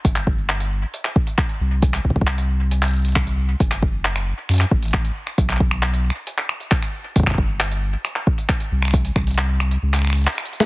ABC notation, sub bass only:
X:1
M:4/4
L:1/8
Q:1/4=135
K:Glyd
V:1 name="Sub bass" clef=bass
G,,,4 z3 =C,,- | =C,, ^B,,,6- B,,, | F,,,3 z F,, A,,,2 z | B,,,3 z4 z |
G,,,4 z3 =C,,- | =C,, ^B,,,3 ^C,,2 z2 |]